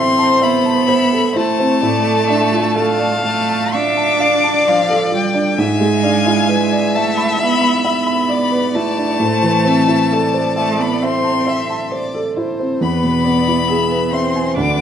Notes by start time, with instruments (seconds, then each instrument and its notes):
Already playing: grand piano A2 E3 C4 E4 A4 C5 E5 A5, cello C4, violin C5 C6
0.18 grand piano A5
0.42 cello B3, grand piano E5, violin B5
0.65 grand piano A5
0.87 grand piano C5, violin E5
1.12 grand piano A4
1.33 cello A3, grand piano E4, violin C5 A5
1.59 grand piano C4
1.81 grand piano A2, violin D5
2.07 grand piano A3
2.27 grand piano D4, violin E5
2.52 grand piano F4
2.74 grand piano A4, violin F5
2.99 grand piano D5
3.23 cello A3, grand piano F5, violin A5
3.49 grand piano A5
3.73 cello D4, violin E5 D6, grand piano F5
3.97 grand piano A5
4.20 violin D5, grand piano F5
4.44 grand piano A5
4.66 cello F3, grand piano D5, violin F5
4.89 grand piano A4
5.11 cello G3, grand piano F4, violin G5
5.34 grand piano D4
5.57 grand piano G#2, cello G#3, violin E5 G#5
5.80 grand piano G#3
6.03 grand piano D4, violin F5
6.26 grand piano E4
6.49 grand piano B4, violin E5
6.72 grand piano D5
6.95 cello A3, grand piano E5, violin A5
7.17 grand piano B5
7.39 cello B3, grand piano E5, violin B5
7.62 grand piano B5
7.84 cello B3, grand piano E5, violin B5
8.07 grand piano B5
8.29 grand piano D5, violin D5
8.52 grand piano B4
8.75 cello A3, grand piano E4, violin A5
8.98 grand piano D4
9.19 grand piano A2, violin C5
9.42 grand piano E3
9.65 grand piano C4, violin E5
9.88 grand piano E4
10.11 grand piano A4, violin D5
10.34 grand piano C5
10.56 cello A3, grand piano E5, violin A5
10.79 cello B3, grand piano A5, violin B5
11.02 cello C4, violin C5 C6, grand piano E5
11.24 grand piano A5
11.47 grand piano E5, violin E5
11.70 grand piano A5
11.92 grand piano C5, violin D5
12.14 grand piano A4
12.37 grand piano E4, violin C5
12.60 grand piano C4
12.80 grand piano E2, cello B3, violin B4 B5
13.04 grand piano B2
13.24 grand piano B3, violin D5
13.47 grand piano E4
13.67 grand piano G#4, violin E5
13.92 grand piano B4
14.11 cello C4, violin C5 C6, grand piano E5
14.35 grand piano G#5
14.55 grand piano D2, cello D4, violin B4 D6